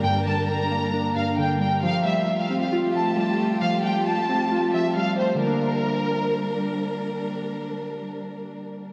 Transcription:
<<
  \new Staff \with { instrumentName = "Violin section" } { \time 4/4 \key g \minor \tempo 4 = 134 g''8 a''8 bes''4. f''8 g''8 g''8 | f''8 e''8. f''8 f''16 r8 a''8 a''8 r8 | f''8 g''8 a''4. e''8 f''8 c''8 | bes'2. r4 |
r1 | }
  \new Staff \with { instrumentName = "String section" } { \time 4/4 \key g \minor <g d' bes'>1 | <a f' g'>1~ | <a f' g'>1 | <g d' bes'>1~ |
<g d' bes'>1 | }
  \new Staff \with { instrumentName = "Synth keys" } { \clef bass \time 4/4 \key g \minor <g, d g d'>8 d4 bes8 d'8 g,8 d8 g8 | f8 g4 c'8 f'8 f8 g8 a8 | f8 g4 c'8 f'8 f8 g8 a8 | <d g bes d'>1~ |
<d g bes d'>1 | }
>>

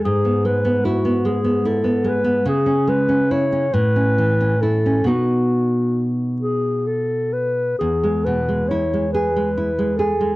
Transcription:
<<
  \new Staff \with { instrumentName = "Clarinet" } { \time 6/8 \key e \major \tempo 4. = 46 gis'8 b'8 fis'8 gis'8 a'8 b'8 | gis'8 b'8 cis''8 b'4 a'8 | fis'4 r8 gis'8 a'8 b'8 | gis'8 b'8 cis''8 b'4 a'8 | }
  \new Staff \with { instrumentName = "Nylon-string guitar" } { \time 6/8 \key e \major gis,16 b16 gis16 b16 e'16 b16 gis16 b16 e'16 b16 gis16 b16 | cis16 cis'16 gis16 cis'16 e'16 cis'16 a,16 cis'16 e16 cis'16 e'16 cis'16 | <b, b dis'>2. | e,16 gis16 b,16 gis16 e'16 gis16 gis'16 gis16 e'16 gis16 gis'16 gis16 | }
>>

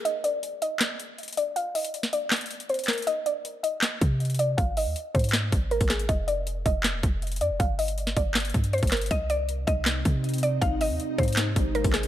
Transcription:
<<
  \new Staff \with { instrumentName = "Synth pluck" } { \time 4/4 \key c \minor \tempo 4 = 159 ees''8 d''4 ees''2 d''8 | f''8 ees''4 d''4. c''8 bes'8 | ees''8 d''4 ees''2 d''8 | f''8 ees''4 c''4. bes'8 aes'8 |
ees''8 d''4 ees''2 d''8 | f''8 ees''4 d''4. c''8 bes'8 | ees''8 d''4 ees''2 d''8 | f''8 ees''4 c''4. bes'8 aes'8 | }
  \new Staff \with { instrumentName = "Ambient pad" } { \time 4/4 \key c \minor r1 | r1 | r1 | r1 |
r1 | r1 | <c c' ees'>1 | <aes g' c''>1 | }
  \new Staff \with { instrumentName = "808-style bass" } { \clef bass \time 4/4 \key c \minor r1 | r1 | r2 r8 c4. | aes,,8. ees,16 r8 aes,4 aes,,8. aes,,8. |
f,,4. f,,8. ees,,16 f,,4 f,16 f,,16 | g,,4. g,,4 g,8. g,,8. | c,4. c,4 c4. | aes,,8. ees,16 r8 aes,4 aes,,8. aes,,8. | }
  \new DrumStaff \with { instrumentName = "Drums" } \drummode { \time 4/4 hh8 hh8 hh8 hh8 <hc hh sn>8 hh8 hh32 hh32 hh32 hh32 hh8 | hh8 <hh hho>16 hh16 hh16 sn16 hh8 <hc hh sn>32 hh32 hh32 hh32 hh16 hh16 hh32 hh32 hh32 hh32 <hc sn>32 hh32 hh32 hh32 | hh8 hh8 hh8 hh8 <hc hh sn>8 <hh bd>8 hh32 hh32 hh32 hh32 hh8 | <hh bd>8 hho8 hh8 <hh bd>32 hh32 hh32 hh32 <hc hh sn>8 <hh bd>8 hh16 <hh bd>16 <hc hh sn>16 hh16 |
<hh bd>8 hh8 hh8 <hh bd>8 <hc hh sn>8 <hh bd>8 hh32 hh32 hh32 hh32 hh8 | <hh bd>8 <hh hho>16 hh16 hh16 sn16 <hh bd>8 <hc hh sn>32 hh32 hh32 hh32 <hh bd>16 hh16 hh32 hh32 <hh bd>32 hh32 <hc sn>32 hh32 hh32 hh32 | <hh bd>8 hh8 hh8 <hh bd>8 <hc hh sn>8 <hh bd>8 hh32 hh32 hh32 hh32 hh8 | <hh bd>8 hho8 hh8 <hh bd>32 hh32 hh32 hh32 <hc hh sn>8 <hh bd>8 hh16 <hh bd>16 <hc hh sn>16 hh16 | }
>>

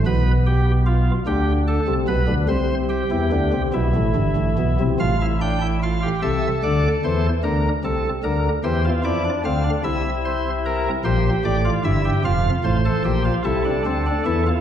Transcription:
<<
  \new Staff \with { instrumentName = "Pipe organ" } { \time 12/8 \key f \major \tempo 4. = 50 << { r1. | f''8 g''8 f''8 e''8 d''8 c''8 r8 a'8 bes'8 c''8 d''8 f''8 | e''8 c''8 bes'8 c''8 d''8 e''8 f''8 c''4 a'4. | } \\ { b'8 g'8 f'8 g'8 a'8 b'8 c''8 g'4 e'4. | f'16 e'16 d'16 e'16 f'16 g'16 a'4. bes'4. g'16 f'16 e'16 d'16 c'16 d'16 | e'4. g'8. f'16 e'16 g'16 f'8. a'16 g'16 f'16 e'16 d'16 c'16 d'16 e'16 f'16 | } >> }
  \new Staff \with { instrumentName = "Pipe organ" } { \clef bass \time 12/8 \key f \major <b,, b,>4. <d, d>8. <c, c>16 <b,, b,>16 <d, d>16 <c, c>8. <e, e>16 <d, d>16 <c, c>16 <b,, b,>16 <a,, a,>16 <g,, g,>16 <a,, a,>16 <b,, b,>16 <c, c>16 | <a,, a,>4. <c, c>8 <d, d>8 <e, e>8 <d, d>8 <c, c>8 <d, d>8 <e, e>8 <f, f>8 <d, d>8 | <c, c>4. <bes,, bes,>8 <a,, a,>8 <g,, g,>8 <f,, f,>8 <a,, a,>8 <bes,, bes,>8 <c, c>8 <d, d>8 <e, e>8 | }
>>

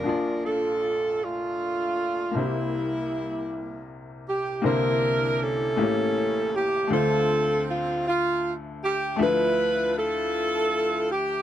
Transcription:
<<
  \new Staff \with { instrumentName = "Saxophone section" } { \time 6/8 \key c \mixolydian \tempo 4. = 52 << { bes'8 a'4 f'4. | e'2 r8 g'8 | bes'4 a'4. g'8 | a'4 f'8 f'8 r8 g'8 |
b'4 a'4. g'8 | } \\ { <d' f'>8 <d' f'>4 <a d'>4. | <g bes>2 r4 | <d' e'>4 <des' e'>4. r8 | <c' f'>4. r4. |
<e' f'>4 <e' f'>4. r8 | } >> }
  \new Staff \with { instrumentName = "Upright piano" } { \time 6/8 \key c \mixolydian <bes,, bes, d' f' d'' a''>2. | <c, c bes d' e' g' c''>2. | <c, c d bes e' c''>4. <a,, a, a bes cis' g'>4. | <d, d a d' f' c''>2. |
<d, d f a b' e''>2. | }
>>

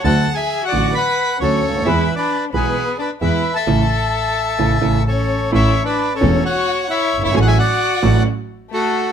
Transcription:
<<
  \new Staff \with { instrumentName = "Bandoneon" } { \time 4/4 \key a \major \tempo 4 = 132 << { \tuplet 3/2 { a''4 gis''8~ gis''8 fis''4 } b''4 cis''4 | \tuplet 3/2 { e''4 d''8~ } d''16. r32 b'4 d''8 e''8. a''16~ | a''2. cis''4 | \tuplet 3/2 { e''4 d''8~ d''8 cis''4 } fis''4 e''8. e''16 |
gis''32 fis''32 gis''16 fis''4. r4 a'4 | } \\ { \tuplet 3/2 { fis''4 e''8~ e''8 d''4 } fis''4 a'4 | \tuplet 3/2 { b'4 b'8~ } b'16 r16 gis'4 b'8 b'8. e''16~ | e''2. a'4 | \tuplet 3/2 { cis''4 b'8~ b'8 a'4 } cis''4 cis''8. cis''16 |
cis''16 e''16 d''4. r4 fis'4 | } >> }
  \new Staff \with { instrumentName = "Violin" } { \time 4/4 \key a \major \tuplet 3/2 { a'4 gis'8~ gis'8 fis'4 } b'4 cis'4 | \tuplet 3/2 { e'4 d'8~ } d'16. r32 b4 d'8 e'8. a'16~ | a'2. cis'4 | \tuplet 3/2 { e'4 d'8~ d'8 cis'4 } fis'4 e'8. e'16 |
gis'32 fis'32 gis'16 fis'4. r4 a4 | }
  \new Staff \with { instrumentName = "Grand piano" } { \clef bass \time 4/4 \key a \major <d, d fis a fis'>8 r4 <a,, a, d fis a fis'>8 r4 <d, d fis a fis'>8 r32 cis,32 d,32 dis,32 | <e, e gis b gis'>8 r4 <b,, b, e gis b gis'>8 r4 <e, e gis b gis'>8 r8 | <cis e a>8 r4. <cis e a>8 <cis e a>8 r4 | <a,, a, e a cis' a'>8 r4 <e,, e, e a cis' a'>8 r4. r32 fis,,32 g,,32 gis,,32 |
<a,, a, fis a cis' a'>8 r4 <a,, a, fis a cis' a'>8 r2 | }
  \new Staff \with { instrumentName = "Double bass" } { \clef bass \time 4/4 \key a \major d,8 r4 a,,8 r4 d,8 d,8 | e,8 r4 b,,8 r4 e,8 r8 | a,,8 r4. a,,8 a,,8 r4 | a,,8 r4 e,,8 r4. g,,8 |
a,,8 r4 a,,8 r2 | }
>>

